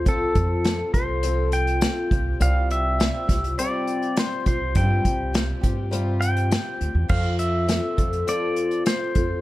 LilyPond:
<<
  \new Staff \with { instrumentName = "Pedal steel guitar" } { \time 4/4 \key f \major \tempo 4 = 102 a'4. c''4 g''4. | f''8 e''4. d''4 c''8 c''8 | g''2 r8 g''4. | f''8 e''4. d''4 c''4 | }
  \new Staff \with { instrumentName = "Twelve-string acoustic guitar" } { \time 4/4 \key f \major <f c' f' a'>4 <f c' f' a'>8 <c' f' a'>8 <f c' f' a'>4 <f c' f' a'>8 <c' f' g'>8 | <c g c' f' g'>4 <g c' f' g'>8 <c' f' g'>8 <c g c' f' g'>4 <g c' f' g'>8 <c' f' g'>8 | <c g c' f' g'>4 <g c' f' g'>8 <c' f' g'>8 <c g c' f' g'>4 <g c' f' g'>4 | <f c' f' a'>4 <f c' f' a'>8 <c' f' a'>8 <f c' f' a'>4 <c' f' a'>8 <c' f' a'>8 | }
  \new Staff \with { instrumentName = "Upright bass" } { \clef bass \time 4/4 \key f \major c,8 f,4 c,2 c,8 | c,4. c,8 r4. c,8 | g,8 c,4 g,2 d,16 e,16 | f,4. f,8 r4. f,8 | }
  \new DrumStaff \with { instrumentName = "Drums" } \drummode { \time 4/4 <hh bd>8 <hh bd>8 <hh sn>8 <hh bd>8 hh8 hh16 hh16 <hh sn>8 <hh bd>8 | hh8 hh8 <hh sn>8 <hh bd sn>16 hh16 hh8 hh16 hh16 <hh sn>8 <hh bd>8 | <hh bd>8 <hh bd>8 <hh sn>8 <hh bd>8 hh8 hh16 hh16 <hh sn>8 hh8 | <cymc bd>8 hh8 <hh sn>8 <hh bd>16 hh16 hh8 hh16 hh16 <hh sn>8 <hh bd>8 | }
>>